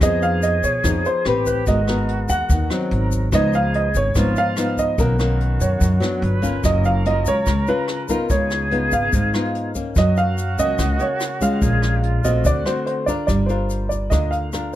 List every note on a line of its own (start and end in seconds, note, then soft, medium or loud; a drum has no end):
0.01 0.59 F2 medium
0.01 0.82 F3 medium
0.01 0.57 B3 medium
0.01 0.57 D#4 medium
0.01 1.27 G#4 medium
0.01 0.58 G#4 medium
0.01 0.23 D#5 loud
0.01 kick medium
0.01 cross-stick medium
0.01 closed hi-hat soft
0.01 shaker medium
0.22 0.44 F5 medium
0.22 closed hi-hat soft
0.22 shaker soft
0.43 0.62 D#5 medium
0.43 closed hi-hat soft
0.43 shaker medium
0.63 0.83 B2 medium
0.63 1.06 C#5 medium
0.63 kick soft
0.63 closed hi-hat soft
0.63 shaker medium
0.84 1.03 F2 medium
0.84 1.23 F3 medium
0.84 1.22 B3 soft
0.84 1.23 D#4 medium
0.84 1.23 G#4 medium
0.84 kick medium
0.84 cross-stick medium
0.84 closed hi-hat soft
0.84 shaker medium
1.05 1.44 C5 medium
1.05 closed hi-hat soft
1.05 shaker soft
1.25 1.64 A1 loud
1.25 1.66 C4 medium
1.25 1.67 G4 medium
1.25 1.66 G4 medium
1.25 1.66 B4 medium
1.25 cross-stick medium
1.25 closed hi-hat soft
1.46 1.68 B4 medium
1.46 kick soft
1.46 closed hi-hat soft
1.46 shaker medium
1.66 2.25 G#1 loud
1.66 2.48 G#3 medium
1.66 1.79 B3 soft
1.66 2.92 F#4 medium
1.66 1.79 F#4 medium
1.66 1.80 A#4 medium
1.66 2.06 D#5 medium
1.66 kick soft
1.66 closed hi-hat soft
1.66 shaker medium
1.88 2.67 B3 medium
1.88 2.68 F#4 medium
1.88 2.68 A#4 medium
1.88 cross-stick medium
1.88 closed hi-hat soft
1.88 shaker soft
2.08 closed hi-hat soft
2.29 2.48 D#2 medium
2.29 3.08 F#5 medium
2.29 kick soft
2.29 shaker medium
2.49 2.69 D#2 loud
2.49 2.89 D#3 medium
2.49 kick medium
2.49 closed hi-hat soft
2.49 shaker medium
2.70 3.29 F#3 medium
2.70 3.30 C4 medium
2.70 3.30 D#4 medium
2.70 cross-stick medium
2.70 closed hi-hat soft
2.70 shaker soft
2.90 3.30 G#1 loud
2.90 3.32 A#4 medium
2.90 closed hi-hat soft
3.12 kick soft
3.12 closed hi-hat soft
3.12 shaker medium
3.32 3.91 C#2 loud
3.32 4.13 C#3 medium
3.32 3.88 F3 medium
3.32 3.88 B3 medium
3.32 3.89 D#4 medium
3.32 4.11 G#4 medium
3.32 3.55 D#5 loud
3.32 kick medium
3.32 cross-stick medium
3.32 closed hi-hat soft
3.32 shaker medium
3.53 3.76 F5 medium
3.53 closed hi-hat soft
3.53 shaker soft
3.74 3.96 D#5 medium
3.74 closed hi-hat soft
3.95 4.14 G#1 medium
3.95 4.38 C#5 loud
3.95 kick soft
3.95 closed hi-hat soft
3.95 shaker medium
4.14 4.35 G#1 medium
4.14 4.96 G#2 medium
4.14 4.54 F3 medium
4.14 4.54 B3 medium
4.14 4.54 D#4 medium
4.14 4.67 F4 medium
4.14 kick medium
4.14 cross-stick medium
4.14 closed hi-hat soft
4.14 shaker medium
4.36 4.80 F5 loud
4.36 closed hi-hat soft
4.36 shaker soft
4.56 4.97 F3 medium
4.56 4.97 B3 medium
4.56 4.97 D#4 medium
4.56 cross-stick medium
4.56 closed hi-hat soft
4.56 shaker medium
4.77 4.98 D#5 medium
4.77 kick soft
4.77 closed hi-hat soft
4.77 shaker medium
4.98 5.56 B1 medium
4.98 5.79 B2 medium
4.98 5.16 D#3 medium
4.98 5.16 A#3 medium
4.98 5.16 C#4 medium
4.98 6.25 F#4 medium
4.98 5.38 A#4 medium
4.98 kick medium
4.98 closed hi-hat soft
4.98 shaker medium
5.19 5.99 D#3 medium
5.19 5.99 A#3 medium
5.19 5.99 C#4 medium
5.19 cross-stick medium
5.19 closed hi-hat soft
5.19 shaker soft
5.40 closed hi-hat soft
5.60 5.80 F#2 medium
5.60 6.40 C#5 medium
5.60 kick soft
5.60 closed hi-hat soft
5.60 shaker medium
5.80 6.20 F#2 medium
5.80 6.00 F#2 medium
5.80 kick medium
5.80 closed hi-hat soft
5.80 shaker medium
6.00 6.39 F#3 medium
6.00 6.40 B3 medium
6.00 6.40 D4 medium
6.00 cross-stick medium
6.00 closed hi-hat soft
6.00 shaker soft
6.22 6.61 G1 loud
6.22 6.65 B4 medium
6.22 closed hi-hat soft
6.42 7.04 A#3 medium
6.42 7.05 C#4 medium
6.42 7.05 F4 medium
6.42 kick soft
6.42 closed hi-hat soft
6.42 shaker medium
6.63 7.22 F#1 medium
6.63 7.45 F#3 medium
6.63 8.31 A#4 loud
6.63 6.86 D#5 medium
6.63 kick medium
6.63 cross-stick medium
6.63 closed hi-hat soft
6.63 shaker medium
6.85 7.04 F5 medium
6.85 closed hi-hat soft
6.85 shaker soft
7.05 7.47 A#3 soft
7.05 7.47 C#4 medium
7.05 7.47 F4 medium
7.05 7.27 D#5 medium
7.05 closed hi-hat soft
7.26 7.45 C#2 medium
7.26 7.70 C#5 loud
7.26 kick soft
7.26 closed hi-hat soft
7.26 shaker medium
7.46 7.66 C#2 loud
7.46 8.28 C#3 medium
7.46 kick medium
7.46 cross-stick medium
7.46 closed hi-hat soft
7.46 shaker medium
7.67 8.06 C#4 soft
7.67 8.06 F4 medium
7.67 8.11 B4 medium
7.67 closed hi-hat soft
7.67 shaker soft
7.88 cross-stick medium
7.88 closed hi-hat soft
8.09 8.68 B3 medium
8.09 8.68 D#4 medium
8.09 8.69 F4 medium
8.09 8.31 A#4 medium
8.09 kick soft
8.09 closed hi-hat soft
8.09 shaker medium
8.30 8.88 C#2 medium
8.30 9.11 C#3 medium
8.30 9.69 G#4 loud
8.30 8.69 C#5 medium
8.30 kick medium
8.30 closed hi-hat soft
8.30 shaker medium
8.50 cross-stick soft
8.50 closed hi-hat soft
8.50 shaker soft
8.71 9.13 B3 medium
8.71 9.13 D#4 medium
8.71 9.13 F4 medium
8.71 closed hi-hat soft
8.92 9.11 G#1 medium
8.92 9.71 F5 medium
8.92 kick soft
8.92 closed hi-hat soft
8.92 shaker medium
9.13 9.32 G#1 medium
9.13 9.94 G#2 soft
9.13 kick medium
9.13 closed hi-hat soft
9.13 shaker medium
9.34 9.72 B3 medium
9.34 9.72 D#4 medium
9.34 9.72 F4 medium
9.34 cross-stick medium
9.34 closed hi-hat soft
9.34 shaker soft
9.55 closed hi-hat soft
9.75 10.34 A#3 medium
9.75 10.34 C#4 medium
9.75 kick soft
9.75 closed hi-hat soft
9.75 shaker medium
9.96 10.54 F#2 medium
9.96 10.77 F#3 medium
9.96 11.64 F#4 loud
9.96 10.18 D#5 medium
9.96 kick medium
9.96 cross-stick medium
9.96 closed hi-hat soft
9.96 shaker medium
10.17 10.56 F5 loud
10.17 closed hi-hat soft
10.17 shaker soft
10.38 closed hi-hat soft
10.38 shaker medium
10.58 10.77 C#2 medium
10.58 10.97 A#3 medium
10.58 10.97 C#4 medium
10.58 11.01 D#5 loud
10.58 kick soft
10.58 closed hi-hat soft
10.58 shaker medium
10.79 10.98 C#2 medium
10.79 11.60 C#3 medium
10.79 kick medium
10.79 cross-stick medium
10.79 closed hi-hat soft
10.79 shaker medium
10.99 11.38 A#3 medium
10.99 11.38 C#4 medium
10.99 11.43 C#5 medium
10.99 closed hi-hat soft
10.99 shaker soft
11.20 cross-stick medium
11.20 closed hi-hat soft
11.20 shaker medium
11.41 12.21 G#3 medium
11.41 12.21 C#4 medium
11.41 12.21 F4 medium
11.41 12.27 F5 medium
11.41 kick soft
11.41 closed hi-hat soft
11.41 shaker medium
11.62 12.20 A#1 loud
11.62 12.43 A#2 medium
11.62 12.05 G#4 medium
11.62 kick medium
11.62 closed hi-hat soft
11.62 shaker medium
11.82 cross-stick medium
11.82 closed hi-hat soft
11.82 shaker soft
12.03 12.46 F4 medium
12.03 closed hi-hat soft
12.24 12.43 A#1 medium
12.24 12.62 A3 medium
12.24 12.62 C4 medium
12.24 12.63 F#4 medium
12.24 12.46 D#5 medium
12.24 kick soft
12.24 closed hi-hat soft
12.24 shaker medium
12.44 12.64 D2 medium
12.44 13.26 D3 medium
12.44 13.07 F#4 medium
12.44 12.67 D5 medium
12.44 kick medium
12.44 closed hi-hat soft
12.44 shaker medium
12.66 13.04 A3 soft
12.66 13.04 C4 medium
12.66 13.05 F#4 medium
12.66 12.85 C5 medium
12.66 cross-stick medium
12.66 closed hi-hat soft
12.66 shaker soft
12.87 13.08 C5 medium
12.87 closed hi-hat soft
13.06 13.48 D4 medium
13.06 13.48 F4 medium
13.06 13.49 A#4 medium
13.06 13.26 D5 medium
13.06 kick soft
13.06 closed hi-hat soft
13.06 shaker medium
13.27 14.07 G1 medium
13.27 14.09 G3 soft
13.27 13.49 D5 medium
13.27 kick soft
13.27 cross-stick soft
13.27 closed hi-hat soft
13.27 shaker medium
13.46 14.08 D4 medium
13.46 14.08 F4 medium
13.46 14.09 A#4 medium
13.46 13.90 C5 medium
13.46 closed hi-hat soft
13.46 shaker soft
13.70 closed hi-hat soft
13.70 shaker soft
13.89 14.11 D5 medium
13.89 kick soft
13.89 closed hi-hat soft
13.89 shaker medium
14.10 14.75 D2 medium
14.10 14.75 D3 soft
14.10 14.50 D4 soft
14.10 14.50 F4 soft
14.10 14.50 A#4 medium
14.10 14.32 D#5 medium
14.10 kick soft
14.10 cross-stick medium
14.10 closed hi-hat soft
14.10 shaker medium
14.31 14.74 F5 medium
14.31 closed hi-hat soft
14.31 shaker soft
14.53 14.75 D4 medium
14.53 14.75 F4 soft
14.53 14.75 A#4 medium
14.53 cross-stick medium
14.53 closed hi-hat soft
14.53 shaker soft